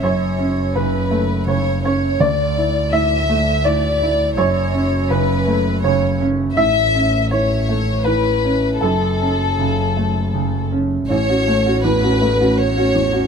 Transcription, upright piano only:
X:1
M:3/4
L:1/16
Q:1/4=82
K:A
V:1 name="Upright piano"
c4 B4 c2 c2 | d4 e4 d4 | c4 B4 c2 z2 | e4 c4 B4 |
A8- A2 z2 | z12 |]
V:2 name="Upright piano"
F,,2 C2 C,2 A,2 C,2 C2 | D,,2 E2 A,,2 A,2 A,,2 E2 | F,,2 C2 C,2 A,2 C,2 C2 | A,,2 C2 E,2 A,2 E,2 C2 |
F,,2 C2 C,2 A,2 C,2 C2 | A,,, [CF] A, [CF] E,, [CF] A, [CF]2 [CF] E,, [CF] |]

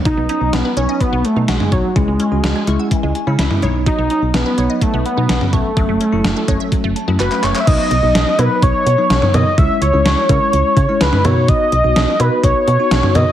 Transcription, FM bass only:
X:1
M:4/4
L:1/16
Q:1/4=126
K:Bmix
V:1 name="FM bass" clef=bass
B,,, B,,, z B,,, B,,, z B,,, z2 B,,, z B,, B,,, z B,,, z | C,, C,, z C,, C,, z C,, z2 C,, z C, C,, z B,,,2- | B,,, B,,, z B,,, B,,, z B,,, z2 B,,, z B,, B,,, z B,,, z | F,,, F,,, z F,,, F,,, z F,,, z2 F,,, z F,, F,,, z F,,, z |
B,,, z B,,, B,,, B,,, z B,, z B,,, z B,, z B,,, z B,, z | C,, z C,, C,, C,, z C, z C,, z C, z C,, z B,,2- | B,, z B,,, B,,, B,,, z B,, z B,,, z B,, z B,,, z B,, z |]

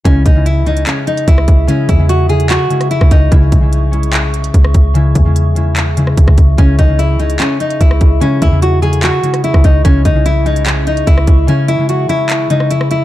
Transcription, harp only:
X:1
M:4/4
L:1/16
Q:1/4=147
K:C#m
V:1 name="Harp" clef=bass
[C,G,E]2 z [C,G,E]2 z [C,G,E]4- [C,G,E] z4 z | [C,G,E]2 z [C,G,E]2 z [C,G,E]2 z2 [C,G,E]4 z2 | [C,G,E]2 z [C,G,E]2 z [G,CE]4- [G,CE] z4 z | [C,G,E]2 z [C,G,E]2 z [C,G,E]2 z2 [C,G,E]4 z2 |
[C,G,E]2 z [C,G,E]2 z [C,G,E]4- [C,G,E] z4 z | [C,G,E]2 z [C,G,E]2 z [C,G,E]2 z2 [C,G,E]4 z2 | [C,G,E]2 z [C,G,E]2 z [G,CE]4- [G,CE] z4 z | [C,G,E]2 z [C,G,E]2 z [C,G,E]2 z2 [C,G,E]4 z2 |]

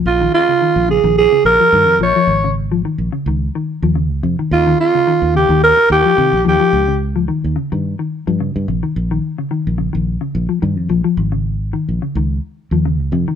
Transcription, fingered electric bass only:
X:1
M:4/4
L:1/16
Q:"Swing 16ths" 1/4=108
K:Bbdor
V:1 name="Fingered electric bass" clef=bass
B,,,2 z3 B,,,2 B,,,2 z B,,, z G,, F,, B,,, z | A,,,4- A,,, B,,, z D,,2 z2 E,,2 D,, F,, z | E,,2 z3 E,,2 E,,2 z E,, z C, B,,, E,, z | D,,4- D,, E,, z G,,2 z2 G,,2 G,, B,,, z |
B,,,2 z3 B,,,2 B,,,2 z B,,, z G,, F,, B,,, z | A,,,4- A,,, B,,, z D,,2 z2 E,,2 D,, F,, z |]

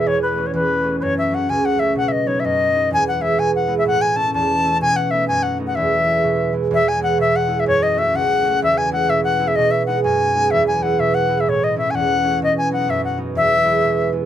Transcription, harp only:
X:1
M:2/4
L:1/8
Q:"Swing" 1/4=126
K:E
V:1 name="Harp"
E,, [A,B,C] E,, [A,B,C] | F,, [F,A,C] C,, [F,A,C] | B,, [F,B,D] F,, [F,B,D] | E,, [G,B,E] B,, [G,B,E] |
A,, [A,CE] E,, [A,CE] | B,, [A,B,D] F,, [A,B,D] | E,, [G,B,E] B,, [G,B,E] | E,, [G,B,E] B,, [G,B,E] |
F,, [A,CF] C,, [A,CF] | E,, [G,B,E] B,, [G,B,E] | B,, [G,B,D] F,, [G,B,D] | E,, [G,B,E] B,, [G,B,E] |
A,, [A,CE] E,, [A,CE] | B,, [F,B,D] F,, [F,B,D] | E,, [G,B,E] B,, [G,B,E] |]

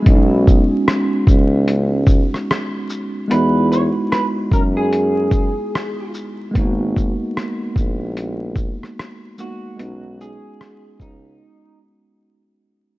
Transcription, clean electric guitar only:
X:1
M:4/4
L:1/16
Q:"Swing 16ths" 1/4=74
K:B
V:1 name="Clean electric guitar"
z16 | B2 c2 B2 A G6- G z2 | z12 z2 F2- | F2 G4 D4 z6 |]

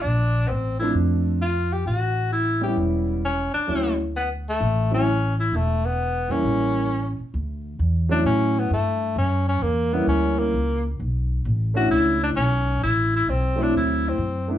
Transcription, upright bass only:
X:1
M:4/4
L:1/8
Q:"Swing" 1/4=131
K:D
V:1 name="Upright bass" clef=bass
_B,,,2 A,,,2 =F,,4 | A,,,4 E,,,3 z | D,,4 A,,,4 | E,,,3 E,, A,,,3 z |
D,,2 E,,2 A,,2 G,,2 | F,,2 E,,2 D,,2 C,,2 | B,,,2 A,,,2 C,,2 B,,,2 | A,,,2 B,,,2 D,,2 F,,2 |]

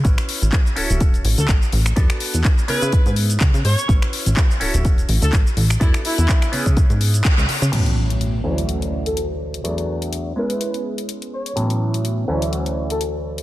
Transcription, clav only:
X:1
M:4/4
L:1/8
Q:"Swing 16ths" 1/4=125
K:A
V:1 name="Clav"
[CEFB]3 [CEFA]4- [CEFA] | [B,DFA]3 [B,CEG]4- [B,CEG] | [CEFB]3 [CEFA]4- [CEFA] | [B,DFA]3 [B,CEG]4- [B,CEG] |
[A,,E,F,B,C]3 [D,,E,F,A,C]4- [D,,E,F,A,C] | [E,,F,A,B,D]3 [G,B,CE]4- [G,B,CE] | [A,,E,F,B,C]3 [D,,E,F,A,C]4- [D,,E,F,A,C] |]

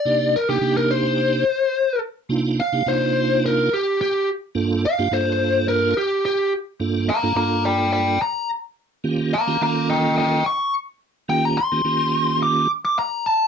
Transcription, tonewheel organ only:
X:1
M:4/4
L:1/16
Q:"Swing 16ths" 1/4=107
K:Gm
V:1 name="Tonewheel organ"
[C,B,DEG]2 z [C,B,DEG] [C,B,DEG]6 z6 | [C,B,DEF]2 z [C,B,DEG] [C,B,DEF]6 z6 | [G,,B,DFA]2 z [G,,B,DFG] [G,,B,DFA]6 z6 | [G,,B,DFA]2 z [G,,B,DFA] [G,,B,DFA]6 z6 |
[E,B,_DFG]2 z [E,B,DFG] [E,B,DFA]6 z6 | [E,B,_DFG]2 z [E,B,DFG] [E,B,DFG]6 z6 |]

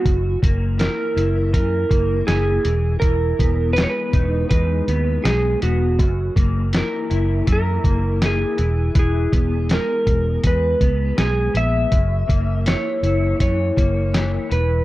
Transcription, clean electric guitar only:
X:1
M:4/4
L:1/8
Q:1/4=81
K:F#mix
V:1 name="Clean electric guitar" clef=bass
F,, A, E, E E, A, E, E, | E, B, G, D G, B, G, B, | F,, A, E, E E, A, E, E, | E, B, G,2 G, B, G, B, |
F,, A, E, E E, A, E, E, |]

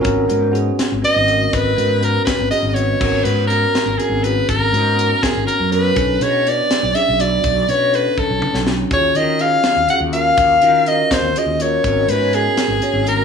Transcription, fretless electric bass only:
X:1
M:6/8
L:1/16
Q:3/8=82
K:G#m
V:1 name="Fretless electric bass" clef=bass
G,,,2 G,,4 z G,,, z G,,,3 | G,,,2 G,,4 z G,,, z G,,,3 | G,,,2 G,,4 z G,,, z G,,,3 | G,,,2 G,,4 z G,,, z F,,3 |
B,,,2 B,,4 z B,,, z B,,,3 | B,,,2 B,,4 z B,,, z B,,,3 | D,,2 D,4 z D,, z D,,3 | D,,2 D,4 z D,, z D,,3 |
G,,,2 G,,4 z G,,, z G,,,3 |]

